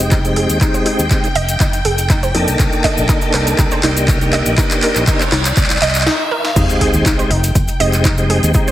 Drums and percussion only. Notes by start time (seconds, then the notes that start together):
0.11 kick, clap, closed hi-hat, cabasa
0.25 closed hi-hat, cabasa
0.36 open hi-hat
0.49 closed hi-hat, cabasa
0.61 kick, clap, closed hi-hat, cabasa
0.74 closed hi-hat, cabasa
0.86 open hi-hat
0.99 cabasa
1.11 kick, clap, closed hi-hat, cabasa
1.24 closed hi-hat, cabasa
1.35 open hi-hat
1.49 closed hi-hat, cabasa
1.60 kick, clap, closed hi-hat, cabasa
1.73 closed hi-hat, cabasa
1.85 open hi-hat
1.98 closed hi-hat, cabasa
2.10 kick, clap, closed hi-hat, cabasa
2.23 closed hi-hat, cabasa
2.35 open hi-hat
2.48 closed hi-hat, cabasa
2.59 kick, clap, closed hi-hat, cabasa
2.73 closed hi-hat, cabasa
2.84 kick, clap, open hi-hat
2.98 cabasa
3.09 kick, clap, closed hi-hat, cabasa
3.21 closed hi-hat, cabasa
3.34 clap, open hi-hat
3.47 closed hi-hat, cabasa
3.59 kick, clap, closed hi-hat, cabasa
3.71 closed hi-hat, cabasa
3.83 clap, open hi-hat
3.97 closed hi-hat, cabasa
4.08 kick, clap, closed hi-hat, cabasa
4.21 closed hi-hat, cabasa
4.33 clap, open hi-hat
4.46 closed hi-hat, cabasa
4.58 kick, clap, closed hi-hat, cabasa
4.71 clap, closed hi-hat, cabasa
4.83 clap, open hi-hat
4.96 clap, cabasa
5.07 kick, clap, closed hi-hat, cabasa
5.21 clap, closed hi-hat, cabasa
5.32 clap, open hi-hat
5.45 clap, closed hi-hat, cabasa
5.57 kick, clap, closed hi-hat, cabasa
5.64 clap
5.70 clap, closed hi-hat, cabasa
5.76 clap
5.82 clap, open hi-hat
5.88 clap
5.95 clap, closed hi-hat, cabasa
6.01 clap
6.07 snare
6.45 snare
6.56 kick, closed hi-hat, crash, cabasa
6.70 closed hi-hat, cabasa
6.81 kick, open hi-hat
6.93 cabasa
7.06 kick, clap, closed hi-hat, cabasa
7.19 closed hi-hat, cabasa
7.31 open hi-hat
7.44 closed hi-hat, cabasa
7.55 kick, closed hi-hat, cabasa
7.68 closed hi-hat, cabasa
7.80 open hi-hat
7.93 clap, closed hi-hat, cabasa
8.05 kick, clap, closed hi-hat, cabasa
8.18 closed hi-hat, cabasa
8.30 open hi-hat
8.43 closed hi-hat, cabasa
8.54 kick, closed hi-hat, cabasa
8.68 closed hi-hat, cabasa